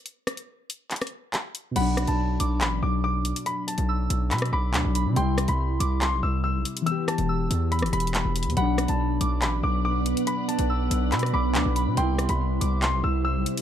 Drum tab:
CC |------------------------------------------------------------------------------------------------|x-----------------------------------------------------------------------------------------------|------------------------------------------------------------------------------------------------|------------------------------------------------------------------------------------------------|
HH |x-----------x-----x-----------------x-----------x--x--x--x--------------x-----------x-----------|x-----------x-----x-----------------x-----------x-----------------------------------x-----x-----|x-----------x-----x-----------------x-----------x---x---x---------------x-----------x-----------|x-----------x-----x-----------------x-----------x-----------------------------------x-----x-----|
CP |------------------------------------------------x-----------------------x-----------------------|------------------------------------------------x-----------------------------------------------|------------------------------------------------x-----------------------x-----------------------|------------------------------------------------x-----------------------------------------------|
SD |------------r-----------------------------------------r-----------------------------------------|------------r-----------------------------------------------------------------------------------|------------------------------------------------------r-----------------------------------------|------------r-----------------------------------------------------------------------------------|

CC |------------------------------------------------------------------------------------------------|------------------------------------------------------------------------------------------------|------------------------------------------------------------------------------------------------|------------------------------------------------------------------------------------------------|
HH |x-----------x-----x-----------------x-----------x---x---x---x---x---x---x-----------x---x---x---|x-----------x-----x-----------------x-----------x-----------------------------------x-----x-----|x-----------x-----x-----------------x-----------x---x---x---------------x-----------x-----------|x-----------x-----x-----------------x-----------x-----------------------------------x-----x-----|
CP |------------------------------------------------------------------------x-----------------------|------------------------------------------------x-----------------------------------------------|------------------------------------------------x-----------------------x-----------------------|------------------------------------------------x-----------------------------------------------|
SD |------------r-----------------------------------------r-----------------------------------------|------------r-----------------------------------------------------------------------------------|------------------------------------------------------r-----------------------------------------|------------r-----------------------------------------------------------------------------------|